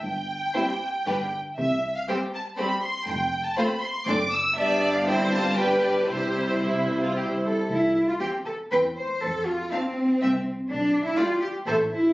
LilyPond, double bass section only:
\new Staff \with { instrumentName = "Double bass section" } { \clef bass \time 3/4 \key c \major \tempo 4 = 119 g,,4 r4 g,,4 | c,4 r2 | f,,4 r4 fis,,4 | g,,2. |
c,2~ c,8 r8 | c,4 r4 e,4 | f,4 r4 c,4 | b,,4 r4 a,,4 | }